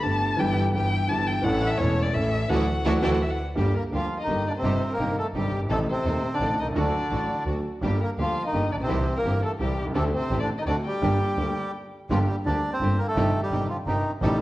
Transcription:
0.03 double bass G1, grand piano G1 G2 D3 A3 B3 G4, string section B3 G4 A4, violin A5
0.37 double bass G1, grand piano G1 G2 E3 G3 B3 G4, string section B3 E4 G4, violin G5
0.73 double bass G1, grand piano G1 G2 E3 G3 B3 G4, string section B3 E4 G4, violin G5
1.08 double bass G1, grand piano G1 G2 E3 G3 B3 G4, string section B3 E4 G4, violin A5
1.27 violin G5
1.42 double bass A1, grand piano A1 A2 E3 A3 C#4, string section C#4 E4 A4, violin F#5
1.46 grand piano A4
1.67 violin E5
1.78 double bass E1, grand piano E1 E2 E3 A3 C#4, string section C#4 E4 A4, violin C#5
1.82 grand piano A4
2.03 violin D5
2.12 grand piano A1 A2 E3 A3 C#4, double bass A1, string section C#4 E4 A4, violin E5
2.16 grand piano A4
2.49 double bass D2, grand piano E3 F#3 A3, string section D4 E4 F#4, violin F#5
2.85 double bass D2, grand piano E3 F#3 A3, string section D4 E4 F#4
3.02 double bass D2, grand piano E3 F#3 A3, string section D4 E4 F#4, violin G5
3.12 violin F#5
3.22 violin E5
3.30 violin F#5
3.55 grand piano G1 G2 D3 G3 A#3 G4, double bass G1, bandoneon G3 G4, string section A#3 D4 G4, violin G4
3.76 bandoneon A#3 A#4, violin A#4
3.92 grand piano D2 D3 G3 A#3 G4, double bass D2, bandoneon F3 F4, string section A#3 D4 G4, violin F5
4.20 bandoneon D#3 D#4, violin D#5
4.27 double bass G1, grand piano G1 G2 D3 G3 A#3 G4, string section A#3 D4 G4
4.48 bandoneon D3 D4, violin D5
4.56 bandoneon C3 C4, violin C5
4.63 double bass G1, grand piano G1 G2 C3 D#3 G3 D#4, string section C4 D#4 G4
4.92 bandoneon A#3 A#4, violin A#4
4.99 double bass G1, grand piano G1 G2 C3 D#3 G3 D#4, string section C4 D#4 G4
5.19 bandoneon A3 A4, violin A4
5.34 double bass G1, grand piano G1 G2 C3 D#3 G3 D#4, string section C4 D#4 G4, violin G4, bandoneon G4
5.38 bandoneon G3
5.52 double bass G1
5.58 grand piano F#1
5.62 grand piano G1 G#1
5.69 double bass A1, grand piano A1 A2 C3 D#3 A3 D#4, bandoneon A3 A4, string section C4 D#4 A4, violin A4
5.89 bandoneon C3 C4, violin C5
6.05 grand piano D#1 D#2 C3 D#3 A3 D#4, double bass D#2, string section C4 D#4 A4
6.34 bandoneon D3 D4, violin D5
6.40 double bass A1, grand piano A1 A2 C3 D#3 A3 D#4, string section C4 D#4 A4
6.57 double bass C2, bandoneon D#3 D#4, violin D#5
6.63 grand piano B1
6.68 grand piano C2
6.72 grand piano C#2 D2 D3 F#3 A3 F#4, double bass D2, string section A3 D4 F#4
6.78 bandoneon D3 D4, violin D5
7.10 double bass A1, grand piano A1 A2 D3 F#3 A3 F#4, string section A3 D4 F#4
7.45 double bass D2, grand piano D2 D3 F#3 A3 F#4, string section A3 D4 F#4
7.82 double bass G1, grand piano G1 G2 D3 G3 A#3 G4, bandoneon G3 G4, string section A#3 D4 G4, violin G4
8.00 bandoneon A#3 A#4, violin A#4
8.18 double bass D2, grand piano D2 D3 G3 A#3 G4, bandoneon F3 F4, string section A#3 D4 G4, violin F5
8.45 bandoneon D#3 D#4, violin D#5
8.53 double bass G1, grand piano G1 G2 D3 G3 A#3 G4, string section A#3 D4 G4
8.71 double bass A#1, bandoneon D3 D4, violin D5
8.76 grand piano A1, violin C5
8.81 grand piano A#1, bandoneon C3 C4
8.85 grand piano B1 C2 E3 G3 C4 G4, double bass C2
8.89 grand piano C3, string section C4 E4 G4
9.16 bandoneon A#3 A#4, violin A#4
9.24 double bass G1, grand piano G1 G2 E3 G3 C4 G4, string section C4 E4 G4
9.42 bandoneon A3 A4, violin A4
9.59 double bass C2, grand piano C2 C3 E3 G3 C4 G4, bandoneon G3 G4, string section C4 E4 G4, violin G4
9.78 grand piano B1, double bass C2
9.86 grand piano C2 C#2
9.95 double bass D2, grand piano D2 D3 A3 C4 G4, bandoneon A3 A4, string section C4 D4 G4, violin A4
10.13 bandoneon C3 C4, violin C5
10.31 double bass A1, grand piano A1 A2 D3 A3 C4 G4, string section C4 D4 G4
10.40 bandoneon D3 D4, violin D5
10.58 bandoneon D#3 D#4, violin D#5
10.66 double bass D2, grand piano D2 D3 A3 C4 F#4, bandoneon D3 D4, string section C4 D4 F#4, violin D5
10.85 bandoneon G3 G4, violin G5
11.02 double bass G1, grand piano G1 G2 D3 G3 A#3 G4, string section A#3 D4 G4
11.37 double bass D2, grand piano D2 D3 G3 A#3 G4, string section A#3 D4 G4
12.10 double bass G1, grand piano G1 G2 D3 G3 A#3 G4, bandoneon F3 F4, string section A#3 D4 G4
12.28 bandoneon G3 G4
12.45 double bass D2, grand piano D2 D3 G3 A#3 G4, string section A#3 D4 G4, bandoneon D4 D5
12.73 bandoneon C4 C5
12.81 double bass G1, grand piano G1 G2 D3 G3 A#3 G4, string section A#3 D4 G4
12.98 bandoneon A#3 A#4
13.08 bandoneon A3 A4
13.16 double bass G1, grand piano G1 G2 C3 D#3 G3 D#4, string section C4 D#4 G4
13.43 bandoneon G3 G4
13.51 double bass G1, grand piano G1 G2 C3 D#3 G3 D#4, string section C4 D#4 G4
13.69 bandoneon F3 F4
13.87 double bass G1, grand piano G1 G2 C3 D#3 G3 D#4, bandoneon D#3 D#4, string section C4 D#4 G4
14.22 double bass A1, grand piano A1 A2 C3 D#3 A3 D#4, bandoneon G3 G4, string section C4 D#4 A4

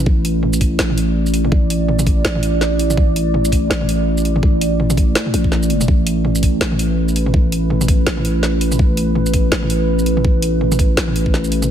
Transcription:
Already playing: ambient pad A3 E4
0.06 808-style bass A1, ambient pad D5, kick
0.25 closed hi-hat
0.43 mid tom
0.53 shaker
0.61 kick, closed hi-hat
0.79 808-style bass A1, snare
0.90 mid tom
0.98 closed hi-hat
1.26 shaker
1.34 closed hi-hat
1.45 mid tom
1.52 808-style bass A1, kick
1.70 closed hi-hat
1.89 mid tom
1.99 mid tom, shaker
2.07 kick, closed hi-hat
2.25 808-style bass A1, snare
2.35 mid tom
2.43 closed hi-hat
2.61 snare
2.79 closed hi-hat
2.90 mid tom, shaker
2.98 808-style bass A1, kick
3.16 closed hi-hat
3.34 mid tom
3.45 shaker
3.52 kick, closed hi-hat
3.70 808-style bass A1, snare
3.81 mid tom
3.89 closed hi-hat
4.18 shaker
4.25 closed hi-hat
4.36 mid tom
4.43 808-style bass A1, kick
4.61 closed hi-hat
4.80 mid tom
4.90 mid tom, shaker
4.97 kick, closed hi-hat
5.15 snare
5.26 mid tom
5.34 808-style bass A1, closed hi-hat
5.44 kick
5.52 snare
5.63 shaker
5.70 closed hi-hat
5.81 mid tom, shaker
5.88 808-style bass A1, ambient pad B4, kick
6.07 closed hi-hat
6.25 mid tom
6.35 shaker
6.43 kick, closed hi-hat
6.61 808-style bass A1, snare
6.72 mid tom
6.79 closed hi-hat
7.08 shaker
7.16 closed hi-hat
7.26 mid tom
7.34 808-style bass A1, kick
7.52 closed hi-hat
7.70 mid tom
7.81 mid tom, shaker
7.88 kick, closed hi-hat
8.07 808-style bass A1, snare
8.17 mid tom
8.25 closed hi-hat
8.43 snare
8.61 closed hi-hat
8.72 mid tom, shaker
8.79 808-style bass A1, kick
8.97 closed hi-hat
9.15 mid tom
9.26 shaker
9.34 kick, closed hi-hat
9.52 808-style bass A1, snare
9.63 mid tom
9.70 closed hi-hat
9.99 shaker
10.06 closed hi-hat
10.17 mid tom
10.25 808-style bass A1, kick
10.42 closed hi-hat
10.61 mid tom
10.72 mid tom, shaker
10.79 kick, closed hi-hat
10.97 808-style bass A1, snare
11.08 mid tom
11.16 closed hi-hat
11.26 kick
11.34 snare
11.44 shaker
11.52 closed hi-hat
11.62 mid tom, shaker

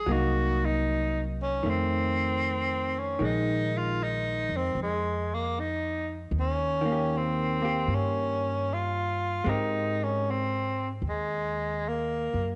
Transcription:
Already playing: tenor saxophone G#4
0.06 upright bass C2, hollow-body jazz guitar F#3 A#3
0.11 hollow-body jazz guitar D#4, tenor saxophone F#4
0.65 tenor saxophone D#4
1.42 tenor saxophone C#4
1.63 upright bass F2, hollow-body jazz guitar D#3 A3
1.70 tenor saxophone C4
2.99 tenor saxophone C#4
3.19 upright bass A#1, hollow-body jazz guitar D#3 G#3
3.25 tenor saxophone D#4
3.78 tenor saxophone F4
4.03 tenor saxophone D#4
4.49 upright bass F2
4.56 tenor saxophone C4
4.75 upright bass F2
4.82 tenor saxophone G#3
5.34 tenor saxophone A#3
5.59 tenor saxophone D#4
6.31 upright bass D#2
6.39 tenor saxophone C#4
6.81 hollow-body jazz guitar D#3
6.85 hollow-body jazz guitar A#3
6.92 hollow-body jazz guitar G4
7.18 tenor saxophone C4
7.62 hollow-body jazz guitar A#3 G4
7.87 upright bass G2
7.94 tenor saxophone C#4
8.73 tenor saxophone F4
9.44 upright bass G#2, hollow-body jazz guitar G#3 C4 G4
9.49 tenor saxophone D#4, hollow-body jazz guitar A#4
10.03 tenor saxophone C#4
10.30 tenor saxophone C4
11.02 upright bass D#2
11.09 tenor saxophone G#3
11.88 tenor saxophone A#3
12.34 upright bass F#2

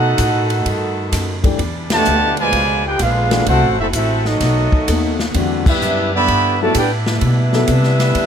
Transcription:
Already playing: upright bass B2, saxophone section D#3 A3 B3 A4, trombone section A3 D#4 F#4, trumpet section D#4 A4 B4 F#5
0.18 upright bass A2, kick, hi-hat pedal, ride
0.50 ride
0.65 upright bass G2, kick, ride
1.12 upright bass F#2, kick, snare, hi-hat pedal, ride
1.43 grand piano E3 A3 D4 G4, kick, ride
1.59 upright bass E2, saxophone section E3 G3 D4 G4, kick, ride
1.90 trombone section B2 D3 A3, trumpet section G4 D5 F#5 A5, snare, ride
2.05 upright bass D2, hi-hat pedal
2.37 trombone section B2 F3 G#3, trumpet section F4 B4 D5 G#5, ride
2.53 upright bass C#2, saxophone section C#3 D3 B3 F4, kick, ride
2.86 trumpet section D#4 G#4 B4 G5, trombone section G4
2.99 upright bass A#1, trombone section G#3 B3 F4, trumpet section D4 G#4 B4 F5, kick, hi-hat pedal, ride
3.31 grand piano E3 A3 D4 F#4, snare, ride
3.46 upright bass C2, saxophone section E3 A3 C4 F#4, trombone section A3 C4 F#4, trumpet section E4 A4 C5 F#5, kick, ride
3.63 upright bass A1
3.77 upright bass F#1, trombone section A3 C4 E4, trumpet section C4 F#4 A4 E5
3.93 upright bass A1, trombone section A3 C4 E4, trumpet section C4 F#4 A4 E5, kick, hi-hat pedal, ride
4.25 trombone section F#3 A3 D#4, trumpet section B3 F#4 A4 D#5, snare
4.40 upright bass B1, saxophone section D#3 B3 F#4, kick, snare, ride
4.72 muted upright bass stroke, kick
4.88 upright bass D#2, grand piano A3 B3 D#4 F#4, kick, hi-hat pedal, ride
5.19 snare
5.34 upright bass E2, grand piano D3 G3 C4 F#4, saxophone section D3 E4 G4, kick, ride
5.66 trombone section G3 B3 E4, trumpet section D4 G4 B4 E5, kick, crash
5.82 upright bass F#2, hi-hat pedal
6.14 trombone section D3 G3 B3, trumpet section G4 D5 E5 B5
6.28 upright bass G2, kick, ride
6.61 grand piano F#3 B3 E4 A4, trombone section A3, trumpet section F#4 B4 D5 A5
6.75 upright bass A2, trombone section B3 D4 G4, trumpet section E4, kick, hi-hat pedal, ride
6.79 trumpet section B4 D5 G5
7.06 trombone section G3 B3 E4, trumpet section D4 G4 B4 E5, snare
7.21 upright bass B2, kick, ride
7.53 grand piano F#3 B3 E4 A4, snare
7.67 upright bass C3, kick, hi-hat pedal, ride
7.83 snare
8.00 snare, ride
8.15 upright bass D3, kick, ride

